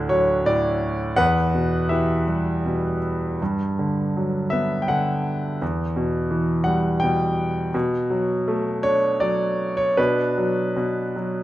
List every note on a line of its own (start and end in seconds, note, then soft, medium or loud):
0.00 1.13 D2 medium
0.00 0.44 A2 soft
0.00 1.13 D3 medium
0.09 1.14 F#3 soft
0.09 0.47 C#5 medium
0.46 1.15 A2 medium
0.46 1.20 D5 medium
1.16 3.36 E2 medium
1.16 2.23 B4 medium
1.16 1.91 F#5 loud
1.54 2.65 B2 soft
1.89 3.37 E3 soft
1.89 2.99 G4 soft
1.89 2.98 E5 medium
2.28 3.38 G3 soft
2.66 3.39 B2 soft
3.42 5.58 G2 medium
3.79 4.88 D3 soft
4.17 5.58 F#3 soft
4.50 5.58 B3 soft
4.50 4.83 E5 medium
4.82 4.89 G5 medium
4.88 5.59 D3 soft
4.88 5.57 F#5 medium
5.62 7.70 E2 medium
5.96 7.02 B2 soft
6.31 7.70 E3 soft
6.64 7.71 G3 soft
6.64 7.02 F#5 medium
7.00 7.73 B2 soft
7.00 7.69 G5 medium
7.74 9.94 B2 medium
8.10 9.20 F#3 soft
8.48 9.95 A3 soft
8.83 9.95 D4 soft
8.83 9.23 C#5 medium
9.20 9.96 F#3 medium
9.20 9.80 D5 medium
9.77 9.98 C#5 medium
9.97 10.75 B2 medium
9.97 11.43 D4 medium
9.97 11.43 B4 medium
10.38 11.15 F#3 soft
10.76 11.43 B2 medium
11.16 11.43 F#3 soft